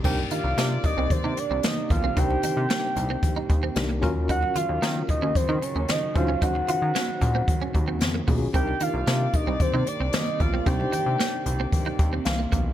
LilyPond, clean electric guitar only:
\new Staff \with { instrumentName = "Clean electric guitar" } { \time 4/4 \key c \minor \tempo 4 = 113 c'16 r16 ees'16 r16 bes16 r8 c'16 r16 ees'16 r16 c'16 bes16 r8 c'16 | c'16 r16 ees'16 r16 bes16 r8 c'16 r16 ees'16 r16 c'16 r16 bes16 bes16 r16 | ees'16 r16 f'16 r16 c'16 r8 des'16 r16 ees'16 r16 des'16 c'16 r8 des'16 | ees'16 r16 f'16 r16 bes16 r8 c'16 r16 des'16 r16 c'16 r16 bes16 bes16 r16 |
c'16 r16 ees'16 r16 bes16 r8 c'16 r16 ees'16 r16 c'16 bes16 r8 c'16 | c'16 r16 ees'16 r16 bes16 r8 c'16 r16 ees'16 r16 c'16 r16 bes16 bes16 r16 | }